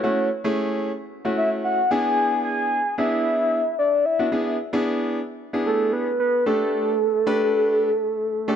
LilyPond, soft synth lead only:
\new Staff \with { instrumentName = "Soft synth lead" } { \time 4/4 \key e \mixolydian \tempo 4 = 112 cis''8 r2 e''8 fis''8 gis''8~ | gis''8 gis''4 e''4. d''8 e''8~ | e''8 r2 a'8 b'8 b'8 | a'1 | }